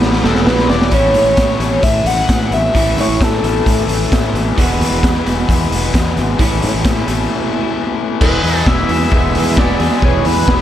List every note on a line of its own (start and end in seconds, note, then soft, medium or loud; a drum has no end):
0.00 0.21 A1 medium
0.00 0.23 A2 loud
0.00 0.90 E3 medium
0.00 0.91 G#3 medium
0.00 0.91 B3 medium
0.00 0.91 E4 medium
0.00 snare medium
0.13 snare medium
0.23 0.45 E1 loud
0.23 0.46 E2 loud
0.23 0.48 A4 medium
0.23 snare medium
0.35 snare medium
0.46 0.67 A#1 medium
0.46 0.68 A#2 loud
0.46 0.71 B4 medium
0.46 snare loud
0.59 snare medium
0.68 0.90 E1 loud
0.68 0.91 E2 medium
0.68 0.95 D5 loud
0.68 snare medium
0.81 snare medium
0.91 1.15 A1 medium
0.91 1.62 A2 medium
0.91 1.62 E3 medium
0.91 1.61 A3 medium
0.91 1.60 C#4 medium
0.91 1.59 E4 loud
0.91 1.83 C#5 medium
0.91 kick medium
0.91 closed hi-hat medium
1.13 1.23 A2 medium
1.13 closed hi-hat medium
1.24 1.33 A1 medium
1.37 1.55 A2 medium
1.37 kick loud
1.37 snare loud
1.37 closed hi-hat medium
1.58 1.77 A1 medium
1.58 2.74 E3 medium
1.58 2.74 A3 medium
1.58 2.73 C#4 medium
1.58 2.76 E4 medium
1.58 closed hi-hat medium
1.63 2.72 A2 medium
1.83 2.01 A2 medium
1.83 2.08 E5 loud
1.83 kick loud
1.83 closed hi-hat medium
2.04 2.22 A1 loud
2.04 2.52 F#5 loud
2.04 closed hi-hat medium
2.29 2.52 A2 medium
2.29 kick loud
2.29 snare loud
2.29 closed hi-hat medium
2.51 2.68 A1 medium
2.51 2.74 E5 loud
2.51 closed hi-hat medium
2.73 2.98 A1 loud
2.73 3.41 A2 medium
2.73 3.45 E3 medium
2.73 3.42 A3 medium
2.73 3.43 C#4 medium
2.73 3.42 E4 loud
2.73 3.02 E5 medium
2.73 kick medium
2.73 closed hi-hat medium
2.96 3.05 A2 medium
2.96 3.22 C#5 medium
2.96 closed hi-hat medium
3.08 3.17 A1 medium
3.21 3.38 A2 medium
3.21 4.32 A4 medium
3.21 kick loud
3.21 snare loud
3.21 closed hi-hat medium
3.42 3.60 A1 medium
3.42 4.57 A2 medium
3.42 4.58 E3 medium
3.42 4.57 A3 medium
3.42 4.56 C#4 medium
3.42 4.60 E4 medium
3.42 closed hi-hat medium
3.66 3.83 A2 medium
3.66 kick loud
3.66 closed hi-hat medium
3.88 4.06 A1 medium
3.88 closed hi-hat medium
4.12 4.35 A2 medium
4.12 kick loud
4.12 snare loud
4.12 closed hi-hat medium
4.33 4.51 A1 medium
4.33 closed hi-hat medium
4.57 4.81 E1 medium
4.57 5.24 E2 medium
4.57 5.24 B2 medium
4.57 5.26 E3 medium
4.57 5.26 G#3 medium
4.57 5.24 B3 medium
4.57 5.24 E4 loud
4.57 6.39 F#4 loud
4.57 kick medium
4.57 closed hi-hat medium
4.79 4.88 E2 medium
4.79 closed hi-hat medium
4.91 5.00 E1 medium
5.03 5.20 E2 medium
5.03 kick loud
5.03 snare loud
5.03 closed hi-hat medium
5.24 5.43 E1 medium
5.24 6.38 B2 medium
5.24 6.39 E3 medium
5.24 6.40 G#3 medium
5.24 6.38 B3 medium
5.24 6.41 E4 medium
5.24 closed hi-hat medium
5.28 6.39 E2 medium
5.49 5.66 E2 medium
5.49 kick loud
5.49 closed hi-hat medium
5.72 5.89 E1 loud
5.72 closed hi-hat medium
5.94 6.18 E2 medium
5.94 kick loud
5.94 snare loud
5.94 closed hi-hat loud
6.17 6.34 G#1 medium
6.17 closed hi-hat medium
6.38 6.64 A1 loud
6.38 7.06 A2 medium
6.38 7.06 E3 medium
6.38 7.07 A3 loud
6.38 7.06 C#4 loud
6.38 7.05 E4 loud
6.38 kick loud
6.38 closed hi-hat medium
6.62 6.71 A2 medium
6.62 closed hi-hat medium
6.74 6.83 A1 medium
6.84 7.02 A2 medium
6.84 kick loud
6.84 snare loud
6.84 closed hi-hat medium
7.06 7.25 A1 medium
7.06 8.21 A2 medium
7.06 8.20 E3 medium
7.06 8.20 A3 medium
7.06 8.19 C#4 medium
7.06 8.19 E4 medium
7.06 closed hi-hat medium
8.20 8.38 E1 loud
8.20 9.10 E2 medium
8.20 8.89 B2 loud
8.20 8.65 E3 loud
8.20 8.67 G#3 loud
8.20 8.68 B3 loud
8.20 10.62 G#4 medium
8.20 8.69 G#4 loud
8.20 8.57 B4 loud
8.20 10.62 E5 medium
8.20 10.62 B5 medium
8.20 10.00 E6 medium
8.20 kick loud
8.20 crash loud
8.43 8.61 E2 medium
8.43 10.02 E3 medium
8.43 open hi-hat medium
8.57 8.68 A4 loud
8.65 8.84 E1 loud
8.65 8.91 E3 medium
8.65 8.90 G#3 medium
8.65 8.89 B3 medium
8.65 8.88 G#4 medium
8.65 8.89 E5 loud
8.65 kick loud
8.65 snare loud
8.88 9.06 E2 medium
8.88 9.12 E3 medium
8.88 9.11 G#3 medium
8.88 9.12 B3 medium
8.88 9.34 E4 medium
8.88 9.13 G#4 medium
8.88 9.53 E5 loud
8.88 open hi-hat medium
9.11 9.37 E1 medium
9.11 9.79 E2 medium
9.11 9.80 B2 medium
9.11 9.56 E3 medium
9.11 9.56 G#3 loud
9.11 9.57 B3 medium
9.11 9.58 G#4 loud
9.11 kick loud
9.34 9.59 E2 medium
9.34 10.62 E4 medium
9.34 open hi-hat medium
9.56 9.74 E1 medium
9.56 9.82 E3 medium
9.56 9.80 G#3 medium
9.56 9.79 B3 medium
9.56 9.78 G#4 medium
9.56 10.06 D5 loud
9.56 kick loud
9.56 snare loud
9.79 9.88 E2 medium
9.79 10.03 E3 medium
9.79 10.03 G#3 medium
9.79 10.03 B3 medium
9.79 10.04 G#4 medium
9.79 open hi-hat medium
9.91 snare soft
10.02 10.20 E1 loud
10.02 10.62 E2 medium
10.02 10.62 B2 medium
10.02 10.47 E3 medium
10.02 10.48 G#3 loud
10.02 10.48 B3 loud
10.02 10.49 G#4 loud
10.02 10.28 C#5 loud
10.02 10.62 F#6 medium
10.02 kick loud
10.25 10.42 E2 medium
10.25 10.62 E3 medium
10.25 10.62 B4 medium
10.25 open hi-hat medium
10.47 10.62 E1 loud
10.47 10.62 E3 medium
10.47 10.62 G#3 medium
10.47 10.62 B3 medium
10.47 10.62 G#4 medium
10.47 kick loud
10.47 snare loud